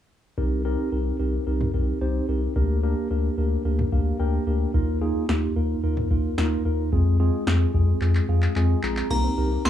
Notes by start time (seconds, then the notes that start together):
0.38 C2 C4 D#4 G4 A#4, kick
0.65 C4 D#4 G4 A#4
0.92 C2 C4 D#4 G4 A#4
1.19 C2 C4 D#4 G4 A#4
1.47 C2 C4 D#4 G4 A#4
1.61 mid tom
1.74 C2 C4 D#4 G4 A#4, kick
2.01 C2 C4 D#4 G4 C5
2.28 C2 C4 D#4 G4 A#4
2.56 D2 A#3 D4 G4 A#4, kick
2.83 A#3 D4 G4 A#4
3.10 D2 A#3 D4 G4 A#4
3.38 D2 A#3 D4 G4 A#4
3.65 D2 A#3 D4 G4 A#4
3.79 mid tom
3.92 D2 A#3 D4 G4 A#4 F5, kick
4.20 D2 A#3 D4 G4 A#4 G5
4.47 D2 A#3 D4 G4 A#4
4.74 D#2 A#3 D#4 F4 A#4, kick
5.02 A#3 D#4 F4 G#4
5.29 D#2 A#3 D#4 F4 G4, snare
5.56 D#2 A#3 D#4 F4 A#4
5.83 D#2 A#3 D#4 F4 A#4
5.97 mid tom
6.11 D#2 A#3 D#4 F4 A#4, kick
6.38 D#2 A#3 D#4 F4 A#4, snare
6.65 D#2 A#3 D#4 F4 A#4
6.92 F2 G#3 C4 F4 G#4, kick
7.20 G#3 C4 F4 G#4
7.47 F2 G#3 C4 F4 G#4, snare
7.74 F2 G#3 C4 F4 G#4, kick
8.01 F2 G#3 C4 F4 G#4, clap
8.15 clap
8.28 F2 G#3 C4 F4 G#4 F5
8.42 clap
8.56 F2 G#3 C4 F4 G#4 G#5, clap
8.83 A#1 G#3 C4 F4 G#4 A#5, clap
8.97 clap
9.10 C2 A#3 C4 D#4 G4 A#4 A#5, kick, crash
9.24 C4
9.38 C2 C4 D#4 G4 A#4
9.65 C2 C4 D#4 G4 A#4 C6, snare